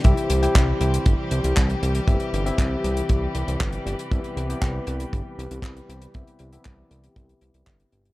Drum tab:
HH |xxxxx-xxx-xxxxxx|xxxxx-xxx-xxxxxx|xxxxx-xxx-xxxxxx|xxxxx-xxxxxxxxxx|
CP |----x-------x---|----x-------x---|----x-------x---|----x-------x---|
BD |o---o---o---o---|o---o---o---o---|o---o---o---o---|o---o---o---o---|